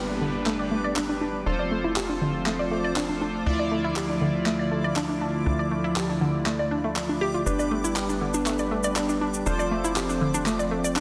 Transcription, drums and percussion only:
0.46 clap
0.96 clap
1.96 clap
2.46 clap
2.96 clap
3.96 clap
4.46 clap
4.96 clap
5.96 clap
6.46 clap
6.96 clap
7.47 cabasa
7.59 cabasa
7.85 cabasa
7.96 clap, cabasa
8.09 cabasa
8.34 cabasa
8.46 clap, cabasa
8.59 cabasa
8.84 cabasa
8.96 clap, cabasa
9.09 cabasa
9.34 cabasa
9.46 cabasa
9.60 cabasa
9.85 cabasa
9.96 clap, cabasa
10.09 cabasa
10.34 cabasa
10.46 clap, cabasa
10.60 cabasa
10.85 cabasa
10.96 clap, cabasa

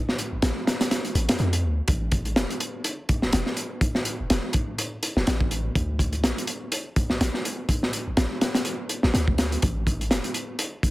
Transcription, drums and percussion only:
0.09 snare
0.18 closed hi-hat
0.42 snare, closed hi-hat
0.67 snare, closed hi-hat
0.81 snare, closed hi-hat
0.91 snare, closed hi-hat
1.05 closed hi-hat
1.15 closed hi-hat
1.29 snare, closed hi-hat
1.39 closed hi-hat
1.53 closed hi-hat
1.88 kick, closed hi-hat
2.12 kick, closed hi-hat
2.25 closed hi-hat
2.36 snare, closed hi-hat
2.50 closed hi-hat
2.60 closed hi-hat
2.84 closed hi-hat
3.09 kick, closed hi-hat
3.22 snare
3.33 snare, closed hi-hat
3.46 snare
3.57 closed hi-hat
3.81 kick, closed hi-hat
3.95 snare
4.05 closed hi-hat
4.30 snare, closed hi-hat
4.53 kick, closed hi-hat
4.78 closed hi-hat
5.03 closed hi-hat
5.17 snare
5.27 snare, closed hi-hat
5.41 kick
5.51 closed hi-hat
5.75 kick, closed hi-hat
5.99 kick, closed hi-hat
6.13 closed hi-hat
6.24 snare, closed hi-hat
6.38 closed hi-hat
6.47 closed hi-hat
6.72 closed hi-hat
6.96 kick, closed hi-hat
7.10 snare
7.21 snare, closed hi-hat
7.34 snare
7.45 closed hi-hat
7.69 kick, closed hi-hat
7.83 snare
7.93 closed hi-hat
8.17 snare, closed hi-hat
8.41 snare, closed hi-hat
8.55 snare, closed hi-hat
8.65 closed hi-hat
8.89 closed hi-hat
9.03 snare
9.14 snare, closed hi-hat
9.28 kick
9.38 snare, closed hi-hat
9.52 closed hi-hat
9.62 kick, closed hi-hat
9.87 kick, closed hi-hat
10.01 closed hi-hat
10.11 snare, closed hi-hat
10.24 closed hi-hat
10.34 closed hi-hat
10.59 closed hi-hat
10.83 kick, closed hi-hat

